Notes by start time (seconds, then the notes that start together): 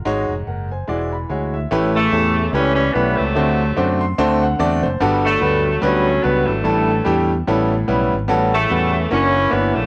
0.05 G#1 G#2 G#3 D#4 F#4 C#5
0.29 F1
0.47 F#1 A#4 F#5
0.71 C5 G#5
0.88 E1 E3 G#3 E4 F#4 D5
1.13 B5
1.29 D2 G#3 E4 F#4 C#5 G#5
1.54 E5
1.71 A1 A2 A3 C#4 E4 G4 B4
1.95 C#3 E3 A3
2.12 E2 A3 C#4 E4 G4 A4
2.52 C#2 E3 G3 A3 C#4 E4 G4 B4
2.75 C#4
2.94 B1 A3 B3 C#4 E4 G4 B4
3.18 C#2 C3 F#3 A3
3.35 D2 D3 A3 C4 D4 F#4 C5
3.76 F#2 A3 C4 D4 F#4 C5
4.01 C6
4.18 D2 D3 A3 C4 D4 F#4 C5 A5
4.43 F#5
4.59 E2 A3 C4 D4 F#4 D5
4.83 F#1 C5
5.00 G1 G2 G3 B3 D4 F#4 A4
5.24 D3 F#3 A3
5.41 D2 G3 B3 D4 F#4 B4
5.82 D2 F#3 G3 A3 B3 C#4 D4 F#4 B4
6.23 C#2 G3 B3 D4 F#4 B4
6.46 G#1 D3 E3 A3
6.64 A1 A2 G3 A3 D4 E4 A4
7.05 E2 G3 A3 D4 E4 G4
7.47 A1 A2 G3 B3 C#4 E4 A4
7.88 B1 G3 B3 C#4 E4 B4
8.13 G#1
8.28 A1 A2 G3 B3 C#4 F#4 A4
8.53 C#3 E3 A3
8.70 E2 G3 B3 C#4 F#4 B4
9.10 F#1 E3 A#3 C#4 D4 E4 F#4 C#5
9.50 G1 A#3 B3 D4 E4 F#4 C#5
9.74 A#1 C#3 D3 A3